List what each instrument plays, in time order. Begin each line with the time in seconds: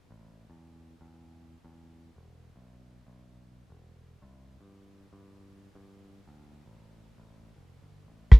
0.11 picked electric bass A1
0.50 picked electric bass E2
1.01 picked electric bass E2
1.65 picked electric bass E2
2.16 picked electric bass E1
2.56 picked electric bass B1
3.07 picked electric bass B1
3.70 picked electric bass E1
4.22 picked electric bass C2
4.61 picked electric bass G2
5.13 picked electric bass G2
5.75 picked electric bass G2
6.28 picked electric bass D2
6.66 picked electric bass A1
7.18 picked electric bass A1
7.56 picked electric bass F1
7.82 picked electric bass G1
8.07 picked electric bass A1
8.32 kick, cross-stick